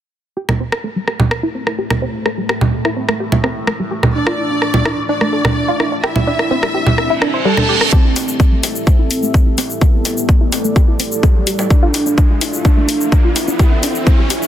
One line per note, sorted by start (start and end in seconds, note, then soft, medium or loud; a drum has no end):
0.37 7.97 A2 medium
0.37 7.97 A3 medium
0.37 6.00 A3 medium
0.37 4.11 C4 medium
0.37 7.89 E4 medium
0.37 4.11 G4 medium
0.37 0.42 G4 medium
0.37 4.11 C5 medium
0.49 0.56 E4 medium
0.49 cross-stick soft
0.49 low conga medium
0.60 0.63 C4 loud
0.72 cross-stick medium
0.84 0.89 A3 medium
0.96 0.99 G3 medium
1.08 1.11 G4 medium
1.08 cross-stick soft
1.20 low conga medium
1.31 cross-stick medium
1.43 1.48 E4 loud
1.55 1.62 C4 medium
1.67 1.72 A3 medium
1.67 cross-stick soft
1.78 1.83 G4 medium
1.90 1.98 E4 medium
1.90 cross-stick medium
1.90 low conga medium
2.02 2.05 C4 loud
2.26 2.31 A3 loud
2.26 cross-stick soft
2.38 2.41 G3 medium
2.49 2.52 G4 medium
2.49 cross-stick medium
2.61 low conga medium
2.85 2.90 E4 loud
2.85 cross-stick soft
2.97 3.04 C4 medium
3.09 3.13 A3 medium
3.09 cross-stick medium
3.20 3.25 G4 medium
3.32 3.39 E4 medium
3.32 low conga medium
3.44 3.47 C4 loud
3.44 cross-stick soft
3.67 3.72 A3 loud
3.67 cross-stick medium
3.79 3.82 G3 medium
3.91 3.94 G4 medium
4.03 cross-stick soft
4.03 low conga medium
4.15 7.89 D4 medium
4.15 5.00 D4 loud
4.15 6.02 F4 medium
4.15 7.89 D5 medium
4.15 5.00 D5 loud
4.27 4.31 F4 loud
4.27 cross-stick medium
4.38 4.46 E4 medium
4.50 4.55 D4 medium
4.62 4.67 A4 medium
4.62 cross-stick soft
4.74 4.81 F4 medium
4.74 low conga medium
4.85 4.88 E4 medium
4.85 cross-stick medium
5.09 5.14 D4 loud
5.09 5.94 D4 loud
5.09 5.94 D5 medium
5.21 5.24 A3 medium
5.21 cross-stick soft
5.33 5.36 A4 medium
5.45 cross-stick medium
5.45 low conga medium
5.68 5.73 F4 loud
5.80 5.87 E4 medium
5.80 cross-stick soft
5.92 5.97 D4 medium
6.04 7.91 C4 medium
6.04 7.36 E4 loud
6.04 6.09 G4 medium
6.04 7.91 G4 medium
6.04 7.36 E5 loud
6.04 cross-stick medium
6.16 6.23 E4 medium
6.16 low conga medium
6.27 6.30 D4 loud
6.39 cross-stick medium
6.51 6.56 C4 loud
6.63 6.66 G3 medium
6.63 cross-stick medium
6.74 6.77 G4 medium
6.87 low conga medium
6.98 cross-stick medium
6.98 reverse cymbal medium
7.10 7.15 E4 medium
7.22 7.29 D4 medium
7.22 cross-stick medium
7.34 7.41 C5 medium
7.45 7.53 G3 loud
7.45 7.89 A4 medium
7.45 7.89 A5 medium
7.57 7.62 D4 medium
7.57 cross-stick medium
7.57 low conga medium
7.69 7.74 G4 loud
7.81 cross-stick medium
7.92 11.67 A3 medium
7.92 8.78 C4 loud
7.92 11.67 E4 medium
7.92 11.67 G4 medium
7.92 7.98 G4 medium
7.92 13.55 A4 medium
7.92 9.80 E5 medium
7.92 kick loud
7.92 riser medium
7.92 shaker soft
8.05 8.12 E4 medium
8.16 8.19 C4 loud
8.16 open hi-hat loud
8.16 low conga medium
8.16 shaker medium
8.28 shaker soft
8.40 8.45 A3 medium
8.40 kick loud
8.40 shaker soft
8.52 8.55 G3 medium
8.63 8.66 G4 medium
8.63 open hi-hat loud
8.63 low conga medium
8.63 shaker medium
8.75 shaker soft
8.87 9.72 C4 loud
8.87 kick loud
8.87 shaker soft
8.99 9.04 E4 medium
9.11 9.18 C4 medium
9.11 open hi-hat loud
9.11 shaker medium
9.23 9.27 A3 medium
9.23 shaker soft
9.34 kick loud
9.34 shaker soft
9.46 9.53 E4 medium
9.58 9.61 C4 loud
9.58 open hi-hat loud
9.58 low conga medium
9.58 shaker medium
9.70 shaker soft
9.81 9.87 A3 loud
9.81 11.14 B3 loud
9.81 11.69 D5 medium
9.81 kick loud
9.81 shaker soft
9.94 9.96 G3 medium
10.05 10.08 G4 medium
10.05 open hi-hat loud
10.05 low conga medium
10.05 shaker medium
10.17 shaker soft
10.29 kick loud
10.29 shaker soft
10.41 10.46 E4 loud
10.52 10.60 C4 medium
10.52 open hi-hat loud
10.52 low conga medium
10.52 shaker medium
10.64 10.69 A3 medium
10.64 shaker soft
10.76 10.81 G4 medium
10.76 kick loud
10.76 shaker soft
10.88 10.95 E4 medium
11.00 11.03 C4 loud
11.00 open hi-hat loud
11.00 shaker medium
11.12 shaker soft
11.23 11.67 G3 medium
11.23 11.28 A3 loud
11.23 kick loud
11.23 shaker soft
11.35 11.38 G3 medium
11.47 11.50 G4 medium
11.47 open hi-hat loud
11.47 shaker medium
11.59 low conga medium
11.59 shaker soft
11.70 14.47 D4 medium
11.70 12.56 D4 loud
11.70 14.47 E4 medium
11.70 13.58 F4 medium
11.70 14.47 E5 medium
11.70 kick loud
11.70 shaker soft
11.83 11.87 F4 loud
11.94 12.02 E4 medium
11.94 open hi-hat loud
11.94 low conga medium
11.94 shaker medium
12.06 12.11 D4 medium
12.06 shaker soft
12.18 12.23 A4 medium
12.18 kick loud
12.18 shaker soft
12.30 12.37 F4 medium
12.41 12.44 E4 medium
12.41 open hi-hat loud
12.41 low conga medium
12.41 shaker medium
12.53 shaker soft
12.65 13.50 D4 loud
12.65 12.70 D4 loud
12.65 kick loud
12.65 shaker soft
12.77 12.80 A3 medium
12.89 12.92 A4 medium
12.89 open hi-hat loud
12.89 shaker medium
13.01 shaker soft
13.12 kick loud
13.12 shaker soft
13.24 13.29 F4 loud
13.36 13.43 E4 medium
13.36 open hi-hat loud
13.36 low conga medium
13.36 shaker medium
13.48 13.53 D4 medium
13.48 shaker soft
13.59 14.47 E4 loud
13.59 14.47 G4 medium
13.59 13.64 G4 medium
13.59 14.47 D5 medium
13.59 kick loud
13.59 shaker soft
13.72 13.79 E4 medium
13.83 13.86 D4 loud
13.83 open hi-hat loud
13.83 low conga medium
13.83 shaker medium
13.95 shaker soft
14.07 14.12 C4 loud
14.07 kick loud
14.07 shaker soft
14.19 14.22 G3 medium
14.30 14.33 G4 medium
14.30 open hi-hat loud
14.30 low conga medium
14.30 shaker medium
14.42 shaker soft